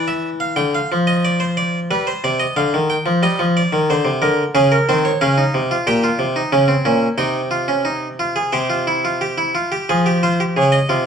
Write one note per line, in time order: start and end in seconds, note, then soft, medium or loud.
0.00 0.56 E3 medium
0.08 0.29 E5 medium
0.40 0.57 F5 medium
0.56 0.78 D3 medium
0.56 0.74 G5 medium
0.75 0.95 F5 medium
0.92 1.88 F3 medium
1.07 1.24 D#5 medium
1.25 1.41 D5 medium
1.40 1.57 C5 medium
1.57 1.78 D5 medium
1.91 2.11 G3 medium
1.91 2.07 B4 medium
2.07 2.24 C5 medium
2.24 2.45 C3 medium
2.24 2.40 D5 medium
2.39 2.56 D#5 medium
2.56 2.73 D3 medium
2.56 2.77 F5 medium
2.74 2.95 D#3 medium
2.90 3.11 G5 medium
3.06 3.23 F3 medium
3.23 3.39 G3 medium
3.23 3.44 D#5 medium
3.39 3.60 F3 medium
3.57 3.77 D5 medium
3.72 3.89 D#3 medium
3.90 4.06 D3 medium
3.90 4.10 C5 medium
4.04 4.21 C3 medium
4.22 4.43 D3 medium
4.22 4.43 A#4 medium
4.55 4.76 C#3 medium
4.55 4.76 C#4 medium
4.55 4.72 G#4 medium
4.72 4.88 A#4 medium
4.89 5.09 D#3 medium
4.89 5.09 C4 medium
4.89 5.05 C5 medium
5.05 5.21 C#5 medium
5.21 5.42 C#3 medium
5.21 5.38 C#4 medium
5.21 5.85 F5 medium
5.38 5.58 D#4 medium
5.54 5.75 C3 medium
5.71 5.87 F4 medium
5.87 6.07 A#2 medium
5.87 6.03 G4 medium
5.87 7.16 G5 medium
6.04 6.24 F4 medium
6.19 6.40 C3 medium
6.36 6.53 D#4 medium
6.53 6.73 C#3 medium
6.53 6.69 C#4 medium
6.68 6.85 C4 medium
6.85 7.07 A#2 medium
6.85 7.07 C#4 medium
7.18 8.49 C3 medium
7.18 7.40 D#4 medium
7.18 8.50 G5 medium
7.51 7.69 F4 medium
7.68 7.86 C#4 medium
7.85 8.07 D#4 medium
8.20 8.37 F4 medium
8.36 8.53 G#4 medium
8.53 9.51 C3 medium
8.53 8.70 G4 medium
8.53 9.51 C5 medium
8.70 8.87 F4 medium
8.87 9.04 E4 medium
9.05 9.21 F4 medium
9.21 9.38 G4 medium
9.38 9.55 E4 medium
9.55 9.72 F4 medium
9.72 9.89 G4 medium
9.90 10.55 F3 medium
9.90 10.06 G#4 medium
10.06 10.23 G4 medium
10.23 10.40 F4 medium
10.23 10.44 C5 medium
10.40 10.56 G4 medium
10.57 10.78 C#3 medium
10.57 10.77 G#4 medium
10.57 10.73 C#5 medium
10.72 10.93 D#5 medium
10.89 11.06 C3 medium
10.89 11.06 F4 medium